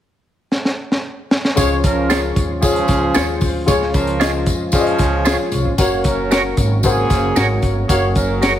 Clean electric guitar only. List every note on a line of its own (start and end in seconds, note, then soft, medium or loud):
2.10 2.19 F4 medium
2.10 2.20 G#4 medium
2.10 2.20 C#5 loud
3.15 3.24 F4 medium
3.15 3.25 G#4 medium
3.15 3.25 C#5 medium
4.20 4.30 F4 medium
4.20 4.30 G#4 medium
4.20 4.31 C#5 medium
5.25 5.35 F4 medium
5.25 5.36 G#4 medium
5.25 5.36 C#5 medium
6.31 6.41 F#4 medium
6.31 6.41 A#4 medium
6.31 6.42 C#5 medium
7.36 7.46 F#4 medium
7.36 7.46 A#4 medium
7.36 7.47 C#5 medium
8.42 8.52 F#4 medium
8.42 8.52 A#4 medium
8.42 8.52 C#5 medium